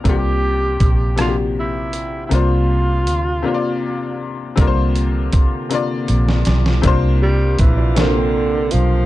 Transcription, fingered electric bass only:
0.06 C2
0.81 A#1
2.32 C2
3.08 D2
4.58 C2
6.10 A#1
6.47 B1
6.85 C2
7.60 A#1
8.74 B1

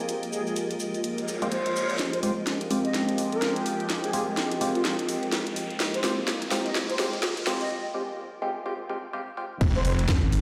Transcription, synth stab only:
Already playing: G#3 C4 F4 G4
1.42 G#3 C4 F4 G4
2.23 G#3 C4 F4 G4
2.71 G#3 C4 F4 G4
4.13 G#3 C4 F4 G4
4.61 G#3 C4 F4 G4
6.04 G#3 C4 F4 G4
6.51 G#3 C4 F4 G4
6.99 G#3 C4 F4 G4
7.47 G#3 C4 F4 G4
7.94 G#3 C4 F4 G4
8.42 G#3 C4 F4 G4
8.66 G#3 C4 F4 G4
8.90 G#3 C4 F4 G4
9.13 G#3 C4 F4 G4
9.37 G#3 C4 F4 G4

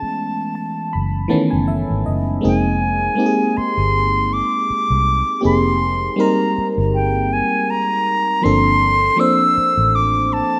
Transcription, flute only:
Already playing: A5
2.47 G#5
3.57 C6
4.33 D6
5.46 C6
6.21 A#5
6.95 G5
7.33 G#5
7.70 A#5
8.44 C6
9.20 E6
9.95 D6
10.33 A5

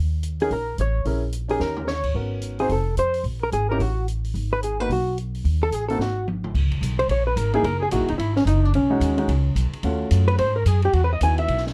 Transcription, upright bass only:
Already playing: D#2
0.51 A#1
0.78 A1
1.05 A#1
1.60 D#2
2.14 G#1
2.69 F1
2.97 F2
3.24 A#1
3.52 G#1
3.79 A1
4.34 G#1
4.89 B1
5.44 D#2
5.71 A1
5.98 G#1
6.54 C#2
6.81 B1
7.08 A#1
7.36 G#1
7.63 F#1
7.92 A#1
8.00 F#1
8.10 E1
8.18 G#1
8.45 F#1
8.74 B1
9.00 D#2
9.28 C#2
9.55 B1
9.83 D#2
10.11 F#2
10.39 G#2
10.65 F#2
10.93 E2
11.21 D#2
11.48 B1

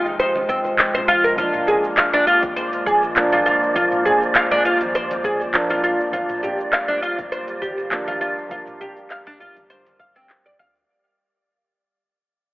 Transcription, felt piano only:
Already playing: A#3 D#4 G5
1.36 F3 A#3
1.40 D4
3.15 F3 A#3 D4
3.74 F3 A#3 D4
5.53 F3 A#3 D4
6.11 F3 A#3 D4
7.91 F3 A#3 D4
8.49 F3 A#3 D4

